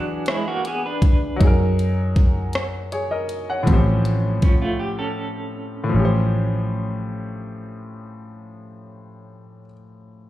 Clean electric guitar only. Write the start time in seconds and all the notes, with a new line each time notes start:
Already playing: F#3 D4
0.29 G#3 E4
0.48 A#3 F#4
0.67 B3 G#4
0.86 D4 B4
4.43 F3 C#4
4.62 A3 F4
4.79 G4
4.99 C#4 A4